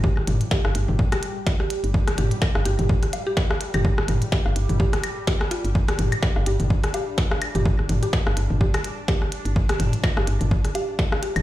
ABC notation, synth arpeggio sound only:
X:1
M:4/4
L:1/16
Q:"Swing 16ths" 1/4=126
K:Cdor
V:1 name="Synth arpeggio sound"
G z3 G z4 G z3 G z2 | z2 G z3 G z4 G z3 G | z4 G z3 G z3 G z F z | z G z4 G z3 G z4 G |
z3 G z4 G z3 G z3 | z G z3 G z4 G z3 G z |]